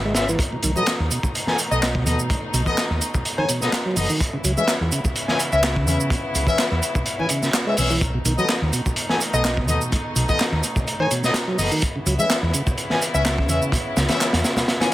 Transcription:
Already playing: G#1 C#3 B3 E4
0.05 G#3
0.15 C#4 B4 E5, snare, closed hi-hat, shaker
0.29 E3, shaker
0.39 B2 A3 D#4, kick, closed hi-hat, shaker
0.53 B2
0.63 B1 D#3, closed hi-hat, shaker
0.76 F#3 B3 A4 D#5, high conga, shaker
0.86 snare, clap, closed hi-hat, shaker
1.00 D#2
1.11 B2, closed hi-hat, shaker
1.23 kick, low conga, shaker
1.35 closed hi-hat, shaker
1.47 B3 A4 G#5, snare, high conga
1.59 closed hi-hat, shaker
1.71 B1 B3 A4 D#5, shaker
1.83 D#5, snare, clap, closed hi-hat, shaker
1.95 B2, kick
2.06 D#2 B2 B3 A4 D#5, closed hi-hat, high conga, shaker
2.19 shaker
2.30 A2, kick, closed hi-hat, shaker
2.54 B1 B2, closed hi-hat, shaker
2.66 B3 A4 D#5, kick, high conga, shaker
2.78 snare, clap, closed hi-hat, shaker
2.90 D#2
3.01 closed hi-hat, shaker
3.14 kick, low conga, shaker
3.25 closed hi-hat, shaker
3.38 D#3 B3 A4 C#5 G#5, high conga
3.49 B2, closed hi-hat, shaker
3.62 B2 B3 A4 D#5, snare, shaker
3.72 snare, clap, closed hi-hat, shaker
3.86 F#3
3.96 F#1 B3 A4 D#5, open hi-hat, high conga, shaker
4.10 D#3, shaker
4.20 C#3 B3 E4, kick, closed hi-hat, shaker
4.33 C#3
4.44 C#2 F#3, closed hi-hat, shaker
4.57 G#3 C#4 B4 E5, high conga, shaker
4.68 snare, clap, closed hi-hat, shaker
4.81 E2
4.92 C#3, closed hi-hat, shaker
5.04 kick, low conga, shaker
5.16 closed hi-hat, shaker
5.28 C#4 B4 G#5, snare, high conga
5.39 closed hi-hat, shaker
5.52 C#2 C#4 B4 E5, shaker
5.63 E5, snare, clap, closed hi-hat, shaker
5.76 C#3, kick
5.87 E2 C#3 C#4 B4 E5, closed hi-hat, high conga, shaker
6.00 shaker
6.10 B2, kick, closed hi-hat, shaker
6.35 C#2 C#3, closed hi-hat, shaker
6.47 C#4 B4 E5, kick, high conga, shaker
6.58 snare, clap, closed hi-hat, shaker
6.71 E2
6.83 closed hi-hat, shaker
6.95 kick, low conga, shaker
7.06 closed hi-hat, shaker
7.19 E3 C#4 B4 G#5, high conga
7.29 C#3, closed hi-hat, shaker
7.42 C#3, snare, shaker
7.54 snare, clap, closed hi-hat, shaker
7.67 G#3 C#4 B4 E5
7.77 B1 C#4 B4 E5, open hi-hat, high conga, shaker
7.90 E3, shaker
8.01 B2 A3 D#4, kick, closed hi-hat, shaker
8.14 B2
8.25 B1 D#3, closed hi-hat, shaker
8.38 F#3 B3 A4 D#5, high conga, shaker
8.49 snare, clap, closed hi-hat, shaker
8.62 D#2
8.73 B2, closed hi-hat, shaker
8.86 kick, low conga, shaker
8.96 closed hi-hat, shaker
9.09 B3 A4 G#5, snare, high conga
9.21 closed hi-hat, shaker
9.33 B1 B3 A4 D#5, shaker
9.44 D#5, snare, clap, closed hi-hat, shaker
9.57 B2, kick
9.68 D#2 B2 B3 A4 D#5, closed hi-hat, high conga, shaker
9.81 shaker
9.92 A2, kick, closed hi-hat, shaker
10.16 B1 B2, closed hi-hat, shaker
10.28 B3 A4 D#5, kick, high conga, shaker
10.40 snare, clap, closed hi-hat, shaker
10.52 D#2
10.63 closed hi-hat, shaker
10.76 kick, low conga, shaker
10.87 closed hi-hat, shaker
10.99 D#3 B3 A4 C#5 G#5, high conga
11.11 B2, closed hi-hat, shaker
11.24 B2 B3 A4 D#5, snare, shaker
11.34 snare, clap, closed hi-hat, shaker
11.47 F#3
11.59 F#1 B3 A4 D#5, open hi-hat, high conga, shaker
11.71 D#3, shaker
11.82 C#3 B3 E4, kick, closed hi-hat, shaker
11.96 C#3
12.06 C#2 F#3, closed hi-hat, shaker
12.19 G#3 C#4 B4 E5, high conga, shaker
12.30 snare, clap, closed hi-hat, shaker
12.43 E2
12.53 C#3, closed hi-hat, shaker
12.67 kick, low conga, shaker
12.78 closed hi-hat, shaker
12.90 C#4 B4 G#5, snare, high conga
13.02 closed hi-hat, shaker
13.14 C#2 C#4 B4 E5, shaker
13.25 E5, snare, clap, closed hi-hat, shaker
13.38 C#3, kick
13.49 E2 C#3 C#4 B4 E5, closed hi-hat, high conga, shaker
13.62 shaker
13.72 B2, kick, closed hi-hat, shaker
13.97 C#2 C#3, snare, closed hi-hat, shaker
14.09 C#4 B4 E5, snare, closed hi-hat, high conga, shaker
14.21 snare, clap, closed hi-hat, shaker
14.33 E2, snare, closed hi-hat
14.44 snare, closed hi-hat, shaker
14.56 snare, closed hi-hat, low conga, shaker
14.68 snare, closed hi-hat, shaker
14.81 E3 C#4 B4 G#5, snare, closed hi-hat, high conga

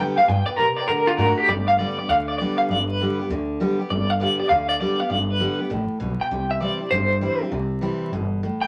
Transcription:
Already playing: F2 G5
0.00 D3 G3 B3 G4 D5 G5
0.18 B3 G4 B4 D5 F5 G5, muted upright bass stroke
0.28 G2 B2 B4 D5 G5
0.46 B4 D5 G5, muted upright bass stroke
0.56 B2 C3 A#4 B4 G5
0.77 B4 D5 G5, muted upright bass stroke
0.88 A2 D3 A4 A#4 D5 F#5
1.07 F4 A4 D5 F#5, muted upright bass stroke
1.17 G#2 D3 A3 D4 F#4 A4 A#4 D5 F#5
1.38 G4 A4 D5 F#5, muted upright bass stroke
1.48 G1 G2 D5
1.68 F5
1.79 D3 G3 B3 G4 D5
1.97 B3 G4 D5, muted upright bass stroke
2.08 D2 D3 F5
2.28 D5
2.38 D3 G3 B3 G4 D5
2.58 F5, muted upright bass stroke
2.69 G1 G2 D5
2.88 B4
3.01 D3 G3 B3 G4
3.19 B3 G4, muted upright bass stroke
3.29 D2 D3
3.60 D3 G3 B3 G4
3.79 B3 G4
3.90 G1 G2 D5
4.10 F5
4.20 D3 G3 B3 G4 D5
4.39 B3 G4 D5, muted upright bass stroke
4.49 D2 D3 F5
4.69 D5
4.80 D3 G3 B3 G4 D5
4.99 B3 G4 F5, muted upright bass stroke
5.10 G1 G2 D5
5.30 B4
5.40 D3 G3 B3 G4
5.60 B3 G4, muted upright bass stroke
5.70 A1 A2
5.90 muted upright bass stroke
6.00 B1 B2
6.21 G5, muted upright bass stroke
6.31 C2 C3
6.51 E5
6.60 E3 G3 C4 E4 D5
6.80 C4 E4, muted upright bass stroke
6.91 G1 G2 C5
7.21 E3 G3 C4 E4
7.41 C4 E4, muted upright bass stroke
7.51 C2 C3
7.81 E3 G3 C4 E4
8.01 muted upright bass stroke
8.12 G1 B2
8.43 A2
8.61 G5, muted upright bass stroke

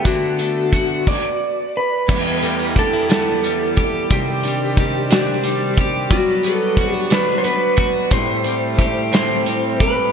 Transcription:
Already playing: D3 A3 B3 D4 A4
0.05 D3 F#4, kick, closed hi-hat
0.39 A3, closed hi-hat
0.73 F#4, kick, closed hi-hat
1.07 D5, kick, crash
1.77 B4
2.08 E2 G3 B3 E4 G4, kick, crash
2.42 G3 A3, closed hi-hat
2.59 B3
2.76 D4 G4 A4, kick, closed hi-hat
2.93 E4
3.10 G3 B3 A4, snare, closed hi-hat
3.43 G3 B3, closed hi-hat
3.77 G3 G4, kick, closed hi-hat
4.10 C3 D#3 G3 C4 G4 C5 D5, kick, closed hi-hat
4.43 G3 D4, closed hi-hat
4.77 D#4 G4, kick, closed hi-hat
5.11 G3 D4 G4, snare, closed hi-hat
5.44 G3 D4, closed hi-hat
5.77 G3 G4, kick, closed hi-hat
6.10 F#3 G3 B3 F#4 B4, kick, closed hi-hat
6.43 B3 A4, closed hi-hat
6.77 C4 F#4, kick, closed hi-hat
6.92 D4 G4
7.10 F#3 D4 B4, snare, closed hi-hat
7.38 C5
7.44 B3 B4, closed hi-hat
7.77 F#3 F#4, kick, closed hi-hat
8.11 A2 G3 A3 C4 E4 A4 C5, kick, closed hi-hat
8.44 G3 C4, closed hi-hat
8.79 E4 G4, kick, closed hi-hat
9.12 G3 C4 C5, snare, closed hi-hat
9.46 G3 C4, closed hi-hat
9.80 G3 G4 B4, kick, closed hi-hat

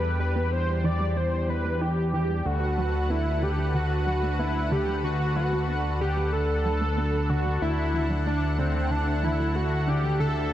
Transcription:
Already playing: E2 G3 D4 G4 B4
0.20 G3 B4
0.36 B3
0.52 E4 C5
0.84 E3 D5
1.01 G3
1.17 E3 C5
1.49 G3 B4
1.65 B3
1.81 E4 G4
2.13 E3 G4
2.30 G3
2.45 D2 D3 F#4 A4 B4 F#5
2.78 F#3 F#4
2.94 A3
3.10 B3 E4
3.42 D3 G4
3.58 F#3
3.74 D3 F#4
4.07 F#3 F#4
4.23 A3
4.39 B3 E4
4.71 D3 G4
4.88 F#3
5.04 D3 F#4
5.36 F#3 F#4
5.52 A3
5.68 B3
6.01 D3 G4
6.17 F#3
6.33 D3 A4
6.65 F#3
6.81 A3
6.97 B3
7.30 D3 F#4
7.46 F#3
7.62 D2 D3 E4 F#5
7.94 E3 E4
8.10 F#3
8.26 A3 D4
8.59 D3 C4
8.75 E3
8.91 D3 D4
9.23 E3 E4
9.39 F#3
9.55 A3 F#4
9.87 D3 G4
10.04 E3
10.20 D3 A4

